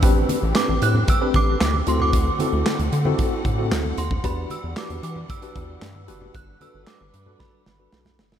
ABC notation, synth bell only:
X:1
M:4/4
L:1/16
Q:1/4=114
K:Ador
V:1 name="Synth bell"
z4 d'2 f'2 e'2 d'4 c' d'- | d'6- d' z6 z c'2 | b2 e'2 d'2 d'2 e'8 | f'2 e'2 d'4 b6 z2 |]